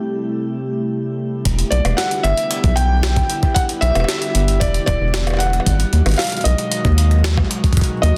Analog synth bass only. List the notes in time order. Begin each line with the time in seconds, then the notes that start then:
1.45 E1
1.72 B1
1.85 E1
2.24 G1
2.64 B1
3.82 B1
3.95 E1
4.35 G1
4.61 E1
4.88 D1
5.01 E1
5.66 G#1
5.93 D#2
6.06 G#1
6.45 B1
6.85 D#2
8.03 D#2